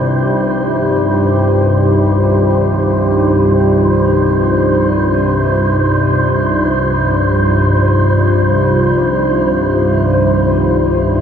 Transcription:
0, 0, Header, 1, 4, 480
1, 0, Start_track
1, 0, Tempo, 500000
1, 10764, End_track
2, 0, Start_track
2, 0, Title_t, "Synth texture"
2, 0, Program_c, 0, 99
2, 0, Note_on_c, 0, 72, 74
2, 4382, Note_off_c, 0, 72, 0
2, 4393, Note_on_c, 0, 72, 87
2, 10764, Note_off_c, 0, 72, 0
2, 10764, End_track
3, 0, Start_track
3, 0, Title_t, "Ambient pad"
3, 0, Program_c, 1, 92
3, 0, Note_on_c, 1, 63, 59
3, 0, Note_on_c, 1, 65, 64
3, 0, Note_on_c, 1, 67, 70
3, 0, Note_on_c, 1, 72, 68
3, 10764, Note_off_c, 1, 63, 0
3, 10764, Note_off_c, 1, 65, 0
3, 10764, Note_off_c, 1, 67, 0
3, 10764, Note_off_c, 1, 72, 0
3, 10764, End_track
4, 0, Start_track
4, 0, Title_t, "Synth drone"
4, 0, Program_c, 2, 95
4, 0, Note_on_c, 2, 36, 59
4, 0, Note_on_c, 2, 43, 66
4, 4391, Note_off_c, 2, 36, 0
4, 4399, Note_off_c, 2, 43, 0
4, 4402, Note_on_c, 2, 36, 72
4, 4411, Note_on_c, 2, 43, 65
4, 10764, Note_off_c, 2, 36, 0
4, 10764, Note_off_c, 2, 43, 0
4, 10764, End_track
0, 0, End_of_file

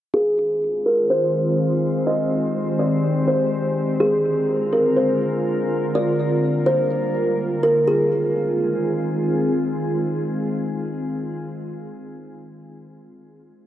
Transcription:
0, 0, Header, 1, 3, 480
1, 0, Start_track
1, 0, Tempo, 483871
1, 134, Time_signature, 4, 2, 24, 8
1, 13559, End_track
2, 0, Start_track
2, 0, Title_t, "Kalimba"
2, 0, Program_c, 0, 108
2, 130, Note_on_c, 0, 68, 98
2, 812, Note_off_c, 0, 68, 0
2, 850, Note_on_c, 0, 70, 68
2, 1080, Note_off_c, 0, 70, 0
2, 1092, Note_on_c, 0, 72, 76
2, 1544, Note_off_c, 0, 72, 0
2, 2053, Note_on_c, 0, 75, 91
2, 2733, Note_off_c, 0, 75, 0
2, 2773, Note_on_c, 0, 74, 74
2, 3224, Note_off_c, 0, 74, 0
2, 3251, Note_on_c, 0, 72, 69
2, 3480, Note_off_c, 0, 72, 0
2, 3972, Note_on_c, 0, 68, 112
2, 4653, Note_off_c, 0, 68, 0
2, 4690, Note_on_c, 0, 70, 74
2, 4920, Note_off_c, 0, 70, 0
2, 4926, Note_on_c, 0, 72, 70
2, 5381, Note_off_c, 0, 72, 0
2, 5903, Note_on_c, 0, 74, 97
2, 6579, Note_off_c, 0, 74, 0
2, 6610, Note_on_c, 0, 72, 86
2, 7532, Note_off_c, 0, 72, 0
2, 7572, Note_on_c, 0, 70, 84
2, 7801, Note_off_c, 0, 70, 0
2, 7812, Note_on_c, 0, 68, 80
2, 9213, Note_off_c, 0, 68, 0
2, 13559, End_track
3, 0, Start_track
3, 0, Title_t, "Ambient pad"
3, 0, Program_c, 1, 92
3, 132, Note_on_c, 1, 51, 76
3, 132, Note_on_c, 1, 56, 68
3, 132, Note_on_c, 1, 60, 70
3, 132, Note_on_c, 1, 65, 65
3, 132, Note_on_c, 1, 72, 81
3, 2033, Note_off_c, 1, 65, 0
3, 2054, Note_on_c, 1, 67, 70
3, 3934, Note_off_c, 1, 51, 0
3, 3934, Note_off_c, 1, 56, 0
3, 3934, Note_off_c, 1, 60, 0
3, 3934, Note_off_c, 1, 72, 0
3, 3955, Note_off_c, 1, 67, 0
3, 3973, Note_on_c, 1, 56, 69
3, 3973, Note_on_c, 1, 60, 71
3, 3973, Note_on_c, 1, 70, 84
3, 3974, Note_on_c, 1, 50, 73
3, 3974, Note_on_c, 1, 65, 70
3, 5874, Note_off_c, 1, 56, 0
3, 5874, Note_off_c, 1, 60, 0
3, 5894, Note_on_c, 1, 55, 66
3, 5895, Note_on_c, 1, 58, 72
3, 7775, Note_off_c, 1, 50, 0
3, 7775, Note_off_c, 1, 65, 0
3, 7775, Note_off_c, 1, 70, 0
3, 7795, Note_off_c, 1, 55, 0
3, 7795, Note_off_c, 1, 58, 0
3, 7814, Note_on_c, 1, 51, 74
3, 7814, Note_on_c, 1, 56, 67
3, 7814, Note_on_c, 1, 60, 72
3, 7814, Note_on_c, 1, 65, 68
3, 7815, Note_on_c, 1, 68, 85
3, 11388, Note_off_c, 1, 51, 0
3, 11389, Note_off_c, 1, 56, 0
3, 11389, Note_off_c, 1, 60, 0
3, 11389, Note_off_c, 1, 65, 0
3, 11390, Note_off_c, 1, 68, 0
3, 13559, End_track
0, 0, End_of_file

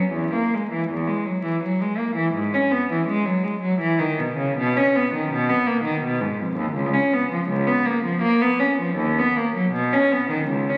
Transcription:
0, 0, Header, 1, 2, 480
1, 0, Start_track
1, 0, Tempo, 762389
1, 64, Time_signature, 3, 2, 24, 8
1, 1020, Tempo, 733496
1, 5340, Tempo, 756620
1, 6959, End_track
2, 0, Start_track
2, 0, Title_t, "Cello"
2, 0, Program_c, 0, 42
2, 0, Note_on_c, 0, 54, 60
2, 68, Note_off_c, 0, 54, 0
2, 74, Note_on_c, 0, 40, 68
2, 193, Note_off_c, 0, 40, 0
2, 216, Note_on_c, 0, 58, 52
2, 326, Note_off_c, 0, 58, 0
2, 341, Note_on_c, 0, 56, 54
2, 447, Note_off_c, 0, 56, 0
2, 456, Note_on_c, 0, 52, 54
2, 561, Note_off_c, 0, 52, 0
2, 570, Note_on_c, 0, 40, 69
2, 676, Note_on_c, 0, 56, 56
2, 677, Note_off_c, 0, 40, 0
2, 790, Note_off_c, 0, 56, 0
2, 791, Note_on_c, 0, 54, 57
2, 906, Note_off_c, 0, 54, 0
2, 908, Note_on_c, 0, 52, 62
2, 1019, Note_off_c, 0, 52, 0
2, 1028, Note_on_c, 0, 54, 63
2, 1141, Note_off_c, 0, 54, 0
2, 1144, Note_on_c, 0, 56, 63
2, 1256, Note_on_c, 0, 58, 62
2, 1260, Note_off_c, 0, 56, 0
2, 1371, Note_on_c, 0, 52, 62
2, 1375, Note_off_c, 0, 58, 0
2, 1487, Note_on_c, 0, 44, 76
2, 1489, Note_off_c, 0, 52, 0
2, 1605, Note_off_c, 0, 44, 0
2, 1621, Note_on_c, 0, 61, 62
2, 1734, Note_off_c, 0, 61, 0
2, 1736, Note_on_c, 0, 59, 69
2, 1851, Note_off_c, 0, 59, 0
2, 1868, Note_on_c, 0, 52, 62
2, 1971, Note_on_c, 0, 56, 76
2, 1975, Note_off_c, 0, 52, 0
2, 2087, Note_off_c, 0, 56, 0
2, 2090, Note_on_c, 0, 54, 69
2, 2209, Note_off_c, 0, 54, 0
2, 2209, Note_on_c, 0, 56, 65
2, 2326, Note_on_c, 0, 54, 71
2, 2328, Note_off_c, 0, 56, 0
2, 2444, Note_off_c, 0, 54, 0
2, 2446, Note_on_c, 0, 52, 78
2, 2565, Note_off_c, 0, 52, 0
2, 2570, Note_on_c, 0, 51, 70
2, 2692, Note_off_c, 0, 51, 0
2, 2700, Note_on_c, 0, 47, 66
2, 2821, Note_off_c, 0, 47, 0
2, 2824, Note_on_c, 0, 49, 64
2, 2945, Note_off_c, 0, 49, 0
2, 2953, Note_on_c, 0, 47, 85
2, 3073, Note_off_c, 0, 47, 0
2, 3080, Note_on_c, 0, 61, 71
2, 3198, Note_off_c, 0, 61, 0
2, 3206, Note_on_c, 0, 59, 73
2, 3320, Note_off_c, 0, 59, 0
2, 3324, Note_on_c, 0, 51, 67
2, 3436, Note_off_c, 0, 51, 0
2, 3436, Note_on_c, 0, 47, 85
2, 3550, Note_off_c, 0, 47, 0
2, 3556, Note_on_c, 0, 59, 75
2, 3668, Note_on_c, 0, 58, 73
2, 3671, Note_off_c, 0, 59, 0
2, 3780, Note_on_c, 0, 51, 66
2, 3785, Note_off_c, 0, 58, 0
2, 3897, Note_off_c, 0, 51, 0
2, 3907, Note_on_c, 0, 47, 77
2, 4019, Note_on_c, 0, 44, 71
2, 4021, Note_off_c, 0, 47, 0
2, 4139, Note_off_c, 0, 44, 0
2, 4142, Note_on_c, 0, 41, 64
2, 4255, Note_on_c, 0, 39, 70
2, 4260, Note_off_c, 0, 41, 0
2, 4366, Note_on_c, 0, 37, 79
2, 4374, Note_off_c, 0, 39, 0
2, 4489, Note_off_c, 0, 37, 0
2, 4497, Note_on_c, 0, 61, 66
2, 4617, Note_off_c, 0, 61, 0
2, 4627, Note_on_c, 0, 59, 72
2, 4741, Note_off_c, 0, 59, 0
2, 4748, Note_on_c, 0, 53, 64
2, 4859, Note_off_c, 0, 53, 0
2, 4862, Note_on_c, 0, 37, 75
2, 4977, Note_off_c, 0, 37, 0
2, 4980, Note_on_c, 0, 59, 68
2, 5098, Note_off_c, 0, 59, 0
2, 5099, Note_on_c, 0, 58, 73
2, 5219, Note_off_c, 0, 58, 0
2, 5224, Note_on_c, 0, 53, 75
2, 5339, Note_off_c, 0, 53, 0
2, 5339, Note_on_c, 0, 58, 80
2, 5453, Note_off_c, 0, 58, 0
2, 5460, Note_on_c, 0, 59, 76
2, 5576, Note_off_c, 0, 59, 0
2, 5576, Note_on_c, 0, 61, 70
2, 5695, Note_off_c, 0, 61, 0
2, 5699, Note_on_c, 0, 53, 72
2, 5810, Note_on_c, 0, 39, 76
2, 5817, Note_off_c, 0, 53, 0
2, 5933, Note_off_c, 0, 39, 0
2, 5952, Note_on_c, 0, 59, 70
2, 6062, Note_on_c, 0, 58, 63
2, 6065, Note_off_c, 0, 59, 0
2, 6177, Note_off_c, 0, 58, 0
2, 6184, Note_on_c, 0, 54, 64
2, 6287, Note_on_c, 0, 47, 81
2, 6294, Note_off_c, 0, 54, 0
2, 6405, Note_off_c, 0, 47, 0
2, 6423, Note_on_c, 0, 61, 66
2, 6535, Note_off_c, 0, 61, 0
2, 6544, Note_on_c, 0, 59, 64
2, 6657, Note_off_c, 0, 59, 0
2, 6659, Note_on_c, 0, 51, 59
2, 6774, Note_off_c, 0, 51, 0
2, 6774, Note_on_c, 0, 37, 67
2, 6895, Note_off_c, 0, 37, 0
2, 6909, Note_on_c, 0, 61, 65
2, 6959, Note_off_c, 0, 61, 0
2, 6959, End_track
0, 0, End_of_file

